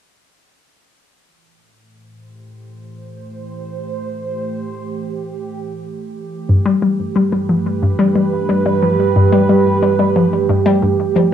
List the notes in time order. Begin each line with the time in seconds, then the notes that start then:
1.15 A2 E3
1.49 A3
1.89 C5
2.21 G4
6.49 G2
6.66 G3
6.82 G3
7.03 B4
7.16 G3
7.32 G3
7.49 F3
7.82 G2
7.99 G3
8.16 G3
8.49 G3
8.66 G3
8.82 F3
9.16 G2
9.32 G3
9.49 G3
9.82 G3
9.99 G3
10.16 F3
10.49 G2
10.66 G3
10.82 G2
11.16 F3